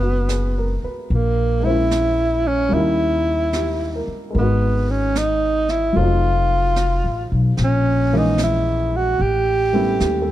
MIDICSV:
0, 0, Header, 1, 6, 480
1, 0, Start_track
1, 0, Tempo, 808625
1, 657, Time_signature, 4, 2, 24, 8
1, 6124, End_track
2, 0, Start_track
2, 0, Title_t, "Tenor saxophone"
2, 0, Program_c, 0, 66
2, 0, Note_on_c, 0, 59, 65
2, 512, Note_off_c, 0, 59, 0
2, 679, Note_on_c, 0, 58, 70
2, 981, Note_on_c, 0, 64, 87
2, 990, Note_off_c, 0, 58, 0
2, 1470, Note_on_c, 0, 61, 75
2, 1479, Note_off_c, 0, 64, 0
2, 1626, Note_on_c, 0, 64, 78
2, 1635, Note_off_c, 0, 61, 0
2, 2424, Note_off_c, 0, 64, 0
2, 2603, Note_on_c, 0, 59, 64
2, 2915, Note_on_c, 0, 61, 68
2, 2924, Note_off_c, 0, 59, 0
2, 3075, Note_on_c, 0, 63, 79
2, 3083, Note_off_c, 0, 61, 0
2, 3387, Note_on_c, 0, 64, 73
2, 3396, Note_off_c, 0, 63, 0
2, 3544, Note_on_c, 0, 65, 80
2, 3553, Note_off_c, 0, 64, 0
2, 4344, Note_off_c, 0, 65, 0
2, 4536, Note_on_c, 0, 61, 68
2, 4851, Note_on_c, 0, 63, 72
2, 4860, Note_off_c, 0, 61, 0
2, 4997, Note_off_c, 0, 63, 0
2, 5008, Note_on_c, 0, 64, 71
2, 5321, Note_on_c, 0, 66, 80
2, 5330, Note_off_c, 0, 64, 0
2, 5475, Note_on_c, 0, 67, 83
2, 5484, Note_off_c, 0, 66, 0
2, 6124, Note_off_c, 0, 67, 0
2, 6124, End_track
3, 0, Start_track
3, 0, Title_t, "Upright piano"
3, 0, Program_c, 1, 0
3, 0, Control_c, 1, 64, 127
3, 0, Note_on_c, 1, 54, 42
3, 0, Note_on_c, 1, 56, 38
3, 0, Note_on_c, 1, 59, 41
3, 0, Note_on_c, 1, 61, 38
3, 0, Note_on_c, 1, 63, 48
3, 16, Note_on_c, 1, 66, 35
3, 178, Note_on_c, 1, 68, 35
3, 264, Note_off_c, 1, 66, 0
3, 344, Note_on_c, 1, 70, 41
3, 475, Note_off_c, 1, 68, 0
3, 501, Note_on_c, 1, 71, 37
3, 589, Note_off_c, 1, 70, 0
3, 649, Note_off_c, 1, 54, 0
3, 653, Note_off_c, 1, 56, 0
3, 658, Note_off_c, 1, 59, 0
3, 659, Note_off_c, 1, 61, 0
3, 664, Control_c, 1, 64, 0
3, 665, Note_off_c, 1, 63, 0
3, 747, Note_off_c, 1, 71, 0
3, 760, Control_c, 1, 64, 127
3, 952, Note_on_c, 1, 56, 40
3, 970, Note_on_c, 1, 58, 36
3, 986, Note_on_c, 1, 72, 39
3, 1002, Note_on_c, 1, 61, 39
3, 1016, Note_on_c, 1, 64, 45
3, 1595, Note_on_c, 1, 55, 46
3, 1600, Note_off_c, 1, 58, 0
3, 1605, Note_off_c, 1, 56, 0
3, 1609, Note_on_c, 1, 58, 43
3, 1619, Note_off_c, 1, 61, 0
3, 1622, Note_off_c, 1, 72, 0
3, 1625, Control_c, 1, 64, 0
3, 1628, Note_on_c, 1, 61, 41
3, 1637, Note_off_c, 1, 64, 0
3, 1642, Note_on_c, 1, 51, 43
3, 1660, Note_on_c, 1, 64, 48
3, 1732, Control_c, 1, 64, 127
3, 2112, Note_on_c, 1, 67, 33
3, 2347, Note_on_c, 1, 70, 36
3, 2483, Note_off_c, 1, 67, 0
3, 2555, Note_on_c, 1, 56, 39
3, 2562, Note_off_c, 1, 70, 0
3, 2569, Note_off_c, 1, 55, 0
3, 2571, Note_on_c, 1, 70, 39
3, 2576, Note_off_c, 1, 58, 0
3, 2585, Note_off_c, 1, 61, 0
3, 2586, Note_on_c, 1, 59, 38
3, 2587, Control_c, 1, 64, 0
3, 2592, Note_off_c, 1, 51, 0
3, 2601, Note_off_c, 1, 64, 0
3, 2601, Note_on_c, 1, 75, 36
3, 2618, Note_on_c, 1, 66, 42
3, 2689, Control_c, 1, 64, 127
3, 3519, Note_on_c, 1, 54, 46
3, 3530, Note_off_c, 1, 56, 0
3, 3538, Note_off_c, 1, 70, 0
3, 3538, Note_on_c, 1, 57, 44
3, 3545, Note_off_c, 1, 59, 0
3, 3549, Control_c, 1, 64, 0
3, 3552, Note_off_c, 1, 75, 0
3, 3552, Note_on_c, 1, 60, 42
3, 3561, Note_off_c, 1, 66, 0
3, 3572, Note_on_c, 1, 63, 43
3, 3587, Note_on_c, 1, 65, 53
3, 3669, Control_c, 1, 64, 127
3, 4491, Note_off_c, 1, 54, 0
3, 4501, Note_off_c, 1, 57, 0
3, 4508, Note_off_c, 1, 60, 0
3, 4512, Control_c, 1, 64, 0
3, 4518, Note_off_c, 1, 63, 0
3, 4525, Note_off_c, 1, 65, 0
3, 4613, Control_c, 1, 64, 127
3, 4826, Note_on_c, 1, 58, 42
3, 4827, Note_on_c, 1, 52, 49
3, 4828, Note_on_c, 1, 56, 46
3, 4831, Note_on_c, 1, 61, 44
3, 4834, Note_on_c, 1, 68, 60
3, 5463, Note_off_c, 1, 52, 0
3, 5463, Note_off_c, 1, 58, 0
3, 5464, Note_off_c, 1, 56, 0
3, 5466, Note_off_c, 1, 61, 0
3, 5467, Note_off_c, 1, 68, 0
3, 5468, Control_c, 1, 64, 0
3, 5585, Control_c, 1, 64, 127
3, 5775, Note_on_c, 1, 55, 44
3, 5779, Note_on_c, 1, 57, 42
3, 5782, Note_on_c, 1, 59, 43
3, 5783, Note_on_c, 1, 61, 44
3, 5784, Note_on_c, 1, 64, 49
3, 5943, Note_on_c, 1, 67, 36
3, 6066, Note_on_c, 1, 69, 42
3, 6124, Note_off_c, 1, 55, 0
3, 6124, Note_off_c, 1, 57, 0
3, 6124, Note_off_c, 1, 59, 0
3, 6124, Note_off_c, 1, 61, 0
3, 6124, Note_off_c, 1, 64, 0
3, 6124, Note_off_c, 1, 67, 0
3, 6124, Note_off_c, 1, 69, 0
3, 6124, End_track
4, 0, Start_track
4, 0, Title_t, "Upright bass"
4, 0, Program_c, 2, 32
4, 0, Note_on_c, 2, 30, 64
4, 467, Note_off_c, 2, 30, 0
4, 654, Note_on_c, 2, 34, 69
4, 1593, Note_off_c, 2, 34, 0
4, 1612, Note_on_c, 2, 39, 61
4, 2393, Note_off_c, 2, 39, 0
4, 2580, Note_on_c, 2, 32, 69
4, 3518, Note_off_c, 2, 32, 0
4, 3541, Note_on_c, 2, 29, 65
4, 4158, Note_off_c, 2, 29, 0
4, 4180, Note_on_c, 2, 33, 52
4, 4330, Note_off_c, 2, 33, 0
4, 4343, Note_on_c, 2, 35, 58
4, 4492, Note_off_c, 2, 35, 0
4, 4500, Note_on_c, 2, 34, 74
4, 5436, Note_off_c, 2, 34, 0
4, 5458, Note_on_c, 2, 33, 67
4, 5915, Note_off_c, 2, 33, 0
4, 5938, Note_on_c, 2, 39, 64
4, 6124, Note_off_c, 2, 39, 0
4, 6124, End_track
5, 0, Start_track
5, 0, Title_t, "Muted upright bass strokes"
5, 494, Note_on_c, 9, 29, 29
5, 554, Note_off_c, 9, 29, 0
5, 2418, Note_on_c, 9, 29, 30
5, 2478, Note_off_c, 9, 29, 0
5, 6124, End_track
6, 0, Start_track
6, 0, Title_t, "Drums"
6, 170, Note_on_c, 9, 38, 33
6, 170, Note_on_c, 9, 44, 48
6, 230, Note_off_c, 9, 38, 0
6, 230, Note_off_c, 9, 44, 0
6, 652, Note_on_c, 9, 25, 28
6, 1134, Note_on_c, 9, 38, 37
6, 1134, Note_on_c, 9, 44, 51
6, 1194, Note_off_c, 9, 38, 0
6, 1194, Note_off_c, 9, 44, 0
6, 1615, Note_off_c, 9, 25, 0
6, 1615, Note_on_c, 9, 25, 28
6, 2095, Note_on_c, 9, 38, 35
6, 2095, Note_on_c, 9, 44, 39
6, 2154, Note_off_c, 9, 38, 0
6, 2154, Note_off_c, 9, 44, 0
6, 2581, Note_off_c, 9, 25, 0
6, 2581, Note_on_c, 9, 25, 27
6, 3059, Note_on_c, 9, 38, 37
6, 3059, Note_on_c, 9, 44, 53
6, 3119, Note_off_c, 9, 38, 0
6, 3119, Note_off_c, 9, 44, 0
6, 3375, Note_on_c, 9, 38, 21
6, 3434, Note_off_c, 9, 38, 0
6, 3535, Note_off_c, 9, 25, 0
6, 3535, Note_on_c, 9, 25, 27
6, 4013, Note_on_c, 9, 38, 36
6, 4013, Note_on_c, 9, 44, 41
6, 4072, Note_off_c, 9, 38, 0
6, 4072, Note_off_c, 9, 44, 0
6, 4495, Note_off_c, 9, 25, 0
6, 4495, Note_on_c, 9, 25, 32
6, 4495, Note_on_c, 9, 38, 25
6, 4554, Note_off_c, 9, 38, 0
6, 4974, Note_on_c, 9, 38, 40
6, 4974, Note_on_c, 9, 44, 51
6, 5034, Note_off_c, 9, 38, 0
6, 5034, Note_off_c, 9, 44, 0
6, 5456, Note_off_c, 9, 25, 0
6, 5456, Note_on_c, 9, 25, 26
6, 5938, Note_on_c, 9, 38, 35
6, 5938, Note_on_c, 9, 44, 40
6, 5997, Note_off_c, 9, 38, 0
6, 5997, Note_off_c, 9, 44, 0
6, 6124, Note_off_c, 9, 25, 0
6, 6124, End_track
0, 0, End_of_file